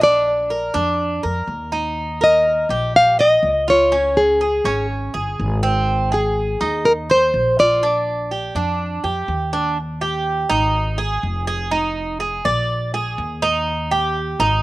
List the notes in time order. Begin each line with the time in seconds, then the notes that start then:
Already playing: A#1
0.01 D4 D5
0.50 A#4
0.74 F2 D4
1.23 F2 A#4
1.48 D#2
1.72 D#4
2.21 A#4 D#5
2.69 A#1 G4
2.96 F5
3.19 D#5
3.43 C#2
3.68 F4 C#5
3.92 C#4
4.17 G#4
4.41 G#4
4.64 G#1 C#4
5.14 G1 G#4
5.40 G#1
5.63 C4
6.12 G#4
6.61 D#2 D#4
6.85 A#4
7.10 C5
7.34 A#1
7.59 F4 D5
7.83 D4
8.31 G4
8.55 F2 D4
9.04 F2 G4
9.28 D#2
9.53 D4
10.01 G4
10.49 G#1 D#4
10.98 G#4
11.23 F1
11.47 G#4
11.71 D#4
12.20 G#4
12.45 A#1 D5
12.94 G#4
13.18 D#2
13.42 D#4
13.91 G4
14.39 G#1 D#4